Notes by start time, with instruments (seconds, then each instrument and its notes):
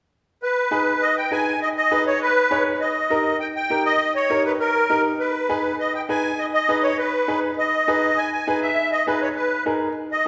0.43 accordion B4
0.71 upright piano D#4 G#4 B4
1.02 accordion D#5
1.17 accordion G5
1.31 upright piano D#4 G#4 B4, accordion G#5
1.62 accordion D#5
1.77 accordion D#5
1.91 upright piano D#4 G#4 B4
2.07 accordion C#5
2.22 accordion B4
2.51 upright piano D#4 G#4 C#5
2.81 accordion D#5
3.10 upright piano D#4 G4 A#4
3.40 accordion G5
3.56 accordion G5
3.70 upright piano D#4 G4 A#4
3.86 accordion D#5
4.16 accordion C#5
4.30 upright piano D#4 G4 A#4
4.46 accordion B4
4.60 accordion A#4
4.90 upright piano D#4 G4 A#4
5.20 accordion B4
5.49 upright piano D#4 G#4 B4
5.80 accordion D#5
5.95 accordion G5
6.09 upright piano D#4 G#4 B4, accordion G#5
6.39 accordion D#5
6.54 accordion D#5
6.69 upright piano D#4 G#4 B4
6.83 accordion C#5
6.98 accordion B4
7.28 upright piano D#4 G#4 B4
7.58 accordion D#5
7.88 upright piano D#4 G#4 B4
8.18 accordion G#5
8.32 accordion G#5
8.47 upright piano D#4 G#4 B4
8.62 accordion E5
8.92 accordion D#5
9.07 upright piano D#4 G#4 B4, accordion B4
9.22 accordion C#5
9.36 accordion B4
9.66 upright piano D#4 G#4 A#4
10.12 accordion D#5